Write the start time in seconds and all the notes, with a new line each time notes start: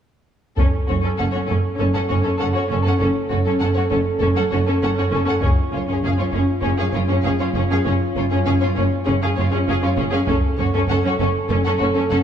0.56 F#1 F#2 C#4 A4, taiko
0.89 F#1 F#2 C#4 F#4 C#5
1.02 F#2 C#4 A4
1.18 F#1 F#2 C#4 A4 F#5
1.32 F#2 C#4 F#4 C#5
1.47 F#1 F#2 C#4 A4
1.78 F#1 F#2 C#4 A4
1.94 F#2 C#4 A4 F#5
2.08 F#1 F#2 C#4 F#4 C#5
2.22 F#2 C#4 A4
2.38 F#1 F#2 C#4 A4 F#5
2.54 F#2 C#4 F#4 C#5
2.69 F#1 F#2 C#4 A4
2.83 F#2 C#4 A4
2.87 F#5
2.99 F#1 F#2 C#4 A4
3.30 F#1 F#2 C#4 F#4 C#5
3.45 F#2 C#4 A4
3.60 F#1 F#2 C#4 A4 F#5
3.75 F#2 C#4 F#4 C#5
3.90 F#1 F#2 C#4 A4
4.19 F#1 F#2 C#4 A4
4.36 F#2 C#4 A4 F#5
4.51 F#1 F#2 C#4 F#4 C#5
4.67 F#2 C#4 A4
4.81 F#1 F#2 C#4 A4 F#5
4.96 F#2 C#4 F#4 C#5
5.11 F#1 F#2 C#4
5.15 A4
5.26 F#2 C#4 A4 F#5
5.41 F#1 F#2 C#4 F4, taiko
5.45 G#4
5.72 F#1 F#2 C#4 F4 C#5
5.88 F#2 C#4 G#4
6.04 F#1 F#2 C#4 G#4 F5
6.18 F#2 C#4 F4 C#5
6.32 F#1 F#2 C#4 G#4
6.62 F#1 F#2 C#4 G#4
6.78 F#2 C#4 G#4 F5
6.92 F#1 F#2 C#4 F4 C#5
7.07 F#2 C#4 G#4
7.23 F#1 F#2 C#4 G#4 F5
7.39 F#2 C#4 F4 C#5
7.54 F#1 F#2 C#4 G#4
7.69 F#2 C#4 G#4 F5
7.84 F#1 F#2 C#4 G#4
8.16 F#1 F#2 C#4 F4 C#5
8.31 F#2 C#4 G#4
8.45 F#1 F#2 C#4 G#4 F5
8.60 F#2 C#4 F4 C#5
8.76 F#1 F#2 C#4 G#4
9.05 F#1 F#2 C#4 G#4
9.22 F#2 C#4 G#4 F5
9.37 F#1 F#2 C#4 F4 C#5
9.51 F#2 C#4 G#4
9.68 F#1 F#2 C#4 G#4 F5
9.82 F#2 C#4 F4 C#5
9.97 F#1 F#2 C#4 G#4
10.11 F#2 C#4 G#4 F5
10.28 F#1 F#2 C#4 A4, taiko
10.58 F#1 F#2 C#4 F#4 C#5
10.73 F#2 C#4 A4
10.89 F#1 F#2 C#4 A4 F#5
11.04 F#2 C#4 F#4 C#5
11.19 F#1 F#2 C#4 A4
11.49 F#1 F#2 C#4 A4
11.65 F#2 C#4 A4 F#5
11.79 F#1 F#2 C#4 F#4 C#5
11.95 F#2 C#4 A4
12.10 F#1 F#2 C#4 A4 F#5